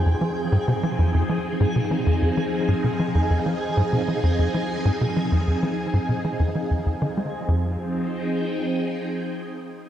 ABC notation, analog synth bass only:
X:1
M:4/4
L:1/16
Q:1/4=97
K:Fm
V:1 name="Analog synth bass" clef=bass
F,, F, z A,, C, F, F,, F,, F, z A,, C, F, F,, F,, F, | z A,, C, F, F,, F,, F, z A,, C, F, F,, F,, F, z A,, | C, F, F,, F,, F, z A,, C, F, F,, F, F,, F,, E, A, z | F,,2 z12 z2 |]